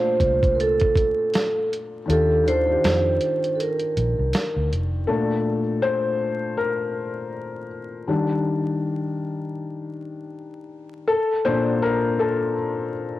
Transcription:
Already playing: A#2 A3 D4 F4 C5
0.20 C2, kick, closed hi-hat
0.43 kick, closed hi-hat
0.55 A#4
0.60 A4, closed hi-hat
0.80 kick, closed hi-hat
0.95 kick, closed hi-hat
1.34 snare, closed hi-hat
1.73 closed hi-hat
2.05 D#2 D#3 D4
2.10 F4 G4 A4, closed hi-hat
2.44 D#3 D4
2.48 F4 A4 C5, closed hi-hat
2.65 D#3 D4
2.70 F4 G4
2.84 F2, snare, closed hi-hat
3.21 closed hi-hat
3.44 closed hi-hat
3.55 A4
3.60 A#4, closed hi-hat
3.79 closed hi-hat
3.97 A#1, closed hi-hat
4.19 C2
4.33 snare, closed hi-hat
4.56 D2
4.72 F1, closed hi-hat
5.07 A#2 A3 D4 A4
5.82 C5
6.57 A#4
8.08 D#3 G3 D4
11.08 A4
11.45 A#2 A#3 D4 C5
11.82 A#4
12.19 A4

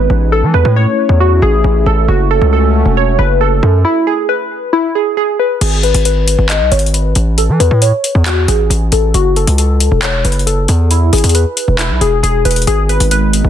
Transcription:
Already playing: G#3 B3 D#4 B4
0.10 A1
0.32 A3 C#4 E4 A4
0.43 E3
0.54 E2 B4
0.65 A2
0.76 C#5
1.09 E2
1.20 F#4
1.42 A1 G#4
1.64 A1
1.86 A1 A4
2.08 F#1 A3 C#4 F#4
2.31 A4
2.42 C#2
2.53 A4
2.86 E1
2.97 C#5
3.19 F#1 B4
3.41 A4
3.63 F#2
3.85 E4
4.07 G#4
4.29 B4
4.73 E4
4.95 G#4
5.17 G#4
5.39 B4
5.61 G#1 G#4, closed hi-hat, crash
5.83 B4, closed hi-hat
5.94 G#1, closed hi-hat
6.05 B4, closed hi-hat
6.28 closed hi-hat
6.39 G#1
6.49 D#5, clap, closed hi-hat
6.61 B1
6.72 G#1 C#5, closed hi-hat
6.79 closed hi-hat
6.86 closed hi-hat
6.94 B4, closed hi-hat
7.15 A1, closed hi-hat
7.38 A4, closed hi-hat
7.49 E3
7.60 E2 B4, closed hi-hat
7.71 A2
7.82 C#5, closed hi-hat
8.04 closed hi-hat
8.15 E2
8.26 F#4, clap, closed hi-hat
8.48 A1 G#4, closed hi-hat
8.70 A1, closed hi-hat
8.92 A1 A4, closed hi-hat
9.14 F#1 F#4, closed hi-hat
9.36 A4, closed hi-hat
9.47 C#2, closed hi-hat
9.58 A4, closed hi-hat
9.80 closed hi-hat
9.92 E1
10.02 C#5, clap, closed hi-hat
10.25 F#1 B4, closed hi-hat
10.32 closed hi-hat
10.39 closed hi-hat
10.47 A4, closed hi-hat
10.68 E2, closed hi-hat
10.91 E4, closed hi-hat
11.13 G#1 G#4, closed hi-hat, open hi-hat
11.18 closed hi-hat
11.24 E2, closed hi-hat
11.29 closed hi-hat
11.35 B4, closed hi-hat
11.57 closed hi-hat
11.68 E1
11.79 E4, clap, closed hi-hat
11.90 B1
12.01 E1 G#4, closed hi-hat
12.23 E1 G#4, closed hi-hat
12.45 E1 B4, closed hi-hat
12.51 closed hi-hat
12.56 closed hi-hat
12.62 closed hi-hat
12.67 G#1 G#3 B3 D#4 G#4, closed hi-hat
12.89 B4, closed hi-hat
13.00 G#1, closed hi-hat
13.11 B4, closed hi-hat
13.33 closed hi-hat
13.44 G#1

